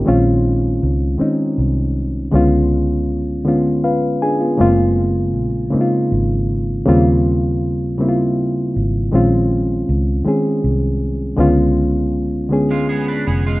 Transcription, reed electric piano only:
X:1
M:6/8
L:1/16
Q:3/8=53
K:Bbm
V:1 name="Reed electric piano"
[B,E] z8 z3 | z8 [F_cf]2 [=DAa] [_CF]- | [_CF] z8 z3 | z12 |
z12 | z12 |]
V:2 name="Reed electric piano"
[E,A,CDF]4- [E,A,CDF] z [E,A,CDE]4- [E,A,CDE] z | [=D,A,_C_DF]4- [=D,A,C_DF] z [=D,A,C_DF]4- [=D,A,C_DF] z | [D,A,B,CF]4- [D,A,B,CF] z [D,A,B,CEF]4- [D,A,B,CEF] z | [D,=G,B,CF]4- [D,G,B,CF] z [D,G,B,C=EF]4- [D,G,B,CEF] z |
[E,A,CDF]4- [E,A,CDF] z [E,A,CDA]4- [E,A,CDA] z | [=D,A,_C_DF]4- [=D,A,C_DF] z [=D,A,C_DA]4- [=D,A,C_DA] z |]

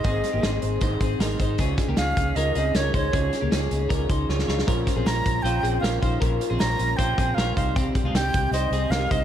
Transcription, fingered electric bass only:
X:1
M:4/4
L:1/16
Q:1/4=156
K:Dblyd
V:1 name="Fingered electric bass" clef=bass
A,,,2 z A,,, A,,,2 A,,,2 A,,,2 A,,,2 A,,,2 A,,,2 | D,,2 z D,, D,,2 D,,2 D,,2 D,,2 D,,2 D,,2 | D,,2 z D,, D,,2 D,,2 D,,2 D,,2 D,,2 D,,2 | B,,,2 z B,,, B,,,2 B,,,2 B,,,2 B,,,2 B,,,2 B,,,2 |
B,,,2 z B,,, B,,,2 B,,,2 B,,,2 B,,,2 B,,,2 C,,2- | C,,2 z C,, C,,2 C,,2 C,,2 C,,2 C,,2 C,,2 |]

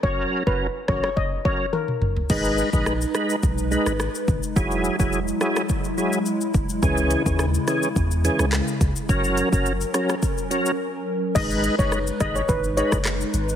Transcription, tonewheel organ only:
X:1
M:4/4
L:1/16
Q:1/4=106
K:G#m
V:1 name="Tonewheel organ"
[F,CA]3 [F,CA] z2 [F,CA] z3 [F,CA] z4 z | [G,DB]3 [G,DB] z2 [G,DB] z3 [G,DB] z4 z | [F,EG]3 [F,EG] z2 [F,EG] z3 [F,EG] z4 z | [E,CG]3 [E,CG] z2 [E,CG] z3 [E,CG] z4 z |
[F,CA]3 [F,CA] z2 [F,CA] z3 [F,CA] z4 z | [G,DB]3 [G,DB] z2 [G,DB] z3 [G,DB] z4 z |]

